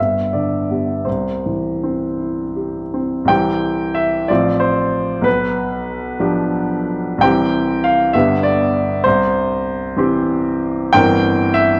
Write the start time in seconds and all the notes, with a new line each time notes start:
Already playing: E5
0.00 G1
0.33 D3 D5
0.71 B3 G4
1.05 C2 C5
1.46 E3
1.83 C4
2.19 E4
2.56 G4
2.94 C4
3.25 C2 E3 G5
3.30 C4 G4
3.95 E5
4.28 A1 F3 C4 F4 D5
4.60 C5
5.21 B1 B4
6.20 F3 D4 G4
7.18 C2 G5
7.23 E3 C4 G4
7.84 F5
8.13 G1 D3 B3 G4 E5
8.43 D5
9.04 C2 C5
9.97 E3 C4 G4
10.93 G1 E3 C4 A#4 G5
11.54 E5